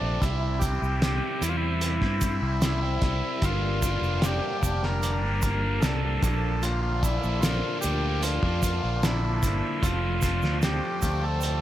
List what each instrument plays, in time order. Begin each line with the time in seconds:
Already playing: overdriven electric guitar C3 F3 A3 C4, transistor combo organ D4
0.01 fingered electric bass A#1
0.21 fingered electric bass C2, overdriven electric guitar C3 G3 C4 E4, transistor combo organ E4, kick, closed hi-hat, shaker
0.59 overdriven electric guitar C3 G3, transistor combo organ G4, kick, closed hi-hat, shaker
0.64 overdriven electric guitar C4 E4
0.82 fingered electric bass C2, overdriven electric guitar G3 C4 E4, shaker
1.02 overdriven electric guitar C3 G3 C4 E4, snare, closed hi-hat, shaker
1.42 fingered electric bass E2, overdriven electric guitar C3 G3 C4 E4, transistor combo organ E4, closed hi-hat, shaker
1.49 transistor combo organ F4
1.57 transistor combo organ E4
1.61 overdriven electric guitar G3 C4 E4
1.81 closed hi-hat, shaker
2.01 fingered electric bass G2, overdriven electric guitar G3 C4 E4, kick, snare
2.21 overdriven electric guitar C3 G3 C4, kick, closed hi-hat, shaker
2.25 overdriven electric guitar E4
2.41 fingered electric bass C2, overdriven electric guitar G3 C4 E4
2.61 overdriven electric guitar C3 G3 C4 E4, transistor combo organ E4, snare, closed hi-hat, shaker
2.81 overdriven electric guitar G3 C4 E4
3.01 fingered electric bass C2, overdriven electric guitar C3 G3 C4 E4, kick, snare, closed hi-hat
3.42 fingered electric bass G1, overdriven electric guitar G2 D3 G3 A#3 D4, string section F3 A#3 G4 D5, transistor combo organ F4, kick, closed hi-hat, shaker
3.82 overdriven electric guitar D3 G3 A#3 D4, kick, closed hi-hat, shaker
4.01 fingered electric bass F1, overdriven electric guitar G3 A#3 D4, shaker
4.21 overdriven electric guitar G2 D3 G3 A#3 D4, transistor combo organ G4, snare, closed hi-hat, shaker
4.62 fingered electric bass F1, overdriven electric guitar D3 G3 A#3 D4, kick, closed hi-hat, shaker
4.83 overdriven electric guitar A#3 D4, transistor combo organ A#4, snare
4.87 overdriven electric guitar G3
5.03 closed hi-hat, shaker
5.23 fingered electric bass G1, overdriven electric guitar G3 A#3 D4
5.42 overdriven electric guitar D3 G3 A#3 D4, kick, closed hi-hat, shaker
5.62 overdriven electric guitar G3 A#3 D4
5.80 fingered electric bass C2, overdriven electric guitar G2 D3 G3, transistor combo organ A4, snare, closed hi-hat, shaker
5.85 overdriven electric guitar A#3 D4
6.03 overdriven electric guitar G3 A#3 D4
6.21 fingered electric bass A#1, overdriven electric guitar A#2 D3 F3 A#3 D4, string section A4 D5, kick, closed hi-hat, shaker
6.62 overdriven electric guitar A#2 D3 F3 A#3 D4, transistor combo organ F4, closed hi-hat, shaker
6.82 transistor combo organ F4
7.02 overdriven electric guitar D3 F3 A#3 D4, transistor combo organ E4, kick, closed hi-hat, shaker
7.22 fingered electric bass A#1, overdriven electric guitar F3 A#3 D4, shaker
7.40 overdriven electric guitar A#2 D3 F3 A#3 D4, transistor combo organ F4, snare, closed hi-hat, shaker
7.81 fingered electric bass D2, overdriven electric guitar D3 F3 A#3, transistor combo organ G4, closed hi-hat, shaker
7.86 overdriven electric guitar D4
8.01 overdriven electric guitar F3 A#3 D4
8.22 transistor combo organ F4, closed hi-hat, shaker
8.42 fingered electric bass F2, overdriven electric guitar F3 A#3 D4, kick
8.62 overdriven electric guitar D3 F3 A#3 D4, kick, closed hi-hat, shaker
8.82 fingered electric bass A#1, overdriven electric guitar F3 A#3 D4
9.02 overdriven electric guitar A#2 D3 F3 A#3 D4, transistor combo organ E4, snare, closed hi-hat, shaker
9.22 overdriven electric guitar F3 A#3 D4
9.41 fingered electric bass G1, overdriven electric guitar D3 F3 A#3 D4, kick, closed hi-hat, shaker
9.81 fingered electric bass F1, overdriven electric guitar F3 A3 C4 F4, transistor combo organ F4, string section C5 D5, kick, closed hi-hat, shaker
10.22 overdriven electric guitar F3 A3 C4 F4, kick, closed hi-hat, shaker
10.42 fingered electric bass D2, overdriven electric guitar A3 C4 F4, snare, shaker
10.60 overdriven electric guitar F3 A3 C4 F4, snare, closed hi-hat, shaker
10.64 transistor combo organ G4
11.00 fingered electric bass D2, overdriven electric guitar F3 A3 C4 F4, kick, closed hi-hat, shaker
11.19 overdriven electric guitar A3 C4 F4
11.23 transistor combo organ A4
11.41 closed hi-hat, shaker